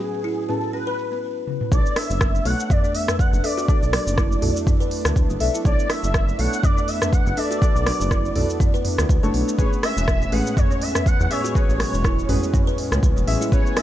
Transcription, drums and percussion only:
0.00 cabasa
0.14 cabasa
0.25 cabasa
0.49 cabasa
0.63 cabasa
0.74 cabasa
0.99 cabasa
1.12 cabasa
1.47 high tom
1.61 mid tom
1.72 kick, cabasa
1.86 cabasa
1.96 cross-stick, open hi-hat
2.11 cabasa
2.21 kick, cross-stick, cabasa
2.35 cabasa
2.45 open hi-hat
2.60 cabasa
2.70 kick, mid tom, cabasa
2.84 cabasa
2.95 open hi-hat
3.08 cross-stick, mid tom, cabasa
3.19 kick, cabasa
3.34 cabasa
3.44 open hi-hat
3.58 cabasa
3.68 kick, cabasa
3.83 cabasa
3.93 cross-stick, open hi-hat
4.07 cabasa
4.18 kick, cross-stick, cabasa
4.32 cabasa
4.42 mid tom, open hi-hat
4.56 cabasa
4.67 kick, mid tom, cabasa
4.81 cabasa
4.91 open hi-hat
5.05 cross-stick, cabasa
5.16 kick, cabasa
5.30 cabasa
5.40 open hi-hat
5.55 cabasa
5.65 kick, cabasa
5.79 cabasa
5.90 cross-stick, open hi-hat
6.04 cabasa
6.14 kick, cross-stick, cabasa
6.29 cabasa
6.39 open hi-hat
6.53 cabasa
6.63 kick, mid tom, cabasa
6.78 cabasa
6.88 open hi-hat
7.02 cross-stick, mid tom, cabasa
7.13 kick, cabasa
7.27 cabasa
7.37 open hi-hat
7.51 cabasa
7.62 kick, cabasa
7.76 cabasa
7.86 cross-stick, open hi-hat
8.01 cabasa
8.11 kick, cross-stick, cabasa
8.25 cabasa
8.36 mid tom, open hi-hat
8.50 cabasa
8.60 kick, mid tom, cabasa
8.74 cabasa
8.85 mid tom, open hi-hat
8.98 cross-stick, cabasa
9.09 kick, cabasa
9.24 cabasa
9.34 open hi-hat
9.48 cabasa
9.59 kick, cabasa
9.73 cabasa
9.83 cross-stick, open hi-hat
9.98 cabasa
10.08 kick, cross-stick, cabasa
10.22 cabasa
10.32 open hi-hat
10.47 cabasa
10.57 kick, mid tom, cabasa
10.71 cabasa
10.82 open hi-hat
10.95 cross-stick, mid tom, cabasa
11.06 kick, cabasa
11.21 cabasa
11.31 open hi-hat
11.45 cabasa
11.55 kick, cabasa
11.70 cabasa
11.80 cross-stick, open hi-hat
11.94 cabasa
12.04 kick, cross-stick, cabasa
12.19 cabasa
12.29 mid tom, open hi-hat
12.43 cabasa
12.54 kick, mid tom, cabasa
12.68 cabasa
12.78 open hi-hat
12.92 cross-stick, cabasa
13.03 kick, cabasa
13.17 cabasa
13.28 open hi-hat
13.42 cabasa
13.52 kick, cabasa
13.66 cabasa
13.77 cross-stick, open hi-hat

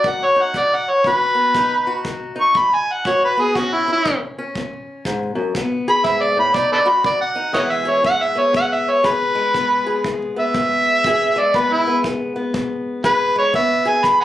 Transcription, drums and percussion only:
0.04 kick
0.54 kick
1.04 kick
1.55 kick
2.05 kick
2.55 kick
3.05 kick
3.55 kick
4.06 kick
4.55 kick
5.05 kick
5.55 kick
6.05 kick
6.54 kick
7.04 kick
7.55 kick
8.04 kick
8.54 kick
9.04 kick
9.55 kick
10.04 kick
10.54 kick
11.04 kick
11.54 kick
12.04 kick
12.54 kick
13.04 kick
13.54 kick
14.04 kick

